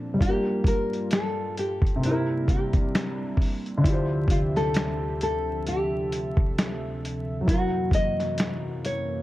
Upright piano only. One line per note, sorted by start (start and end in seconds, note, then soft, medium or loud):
0.00 0.13 A#2 medium
0.00 0.15 A#3 medium
0.00 0.17 D4 medium
0.00 0.20 F4 medium
0.14 1.95 G3 medium
0.19 1.98 D4 medium
0.24 2.00 F4 medium
0.29 2.03 A#3 medium
1.96 3.77 C3 medium
2.01 3.80 C4 medium
2.06 3.82 E4 medium
2.11 3.85 A#4 medium
3.78 7.40 D3 medium
3.78 7.42 D4 medium
3.84 7.43 E4 medium
3.84 7.45 F4 medium
3.90 7.47 G4 medium
3.90 7.48 C5 medium
7.41 9.22 F#3 medium
7.46 9.22 E4 medium
7.51 9.22 A#4 medium